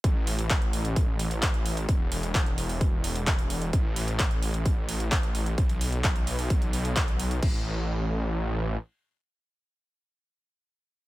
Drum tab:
CC |----------------|----------------|----------------|----------------|
HH |x-oxxxoxx-oxxxox|x-oxxxoox-oxxxox|x-oxxxoxx-oxxxox|xxoxxxooxxoxxxox|
CP |----x-------x---|----x-------x---|----x-------x---|----x-------x---|
BD |o---o---o---o---|o---o---o---o---|o---o---o---o---|o---o---o---o---|

CC |x---------------|----------------|
HH |----------------|----------------|
CP |----------------|----------------|
BD |o---------------|----------------|